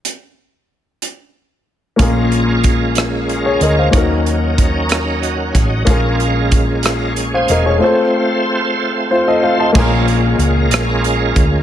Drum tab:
CC |------|------|------|------|
HH |x--x--|xxxxxx|xxxxxx|xxxxxx|
SD |------|---r--|---r--|---r--|
BD |------|o-o---|o-o--o|o-o---|

CC |------|x-----|
HH |------|-xxxxx|
SD |------|---r--|
BD |------|o----o|